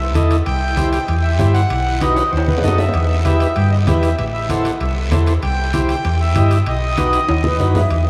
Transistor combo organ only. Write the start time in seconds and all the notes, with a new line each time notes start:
0.15 E4 A4 D#5
0.77 E4 G4 C5
1.39 E4 G4 C5
2.01 D#4 F#4 B4
2.63 D#4 F#4 A4
3.25 E4 G4 B4
3.87 E4 G4 B4
4.50 E4 A4 C5
5.11 E4 A4 C5
5.74 E4 G4 C5
6.36 E4 G4 D#5
6.97 D#4 F#4 B4
7.60 D#4 F#4 B4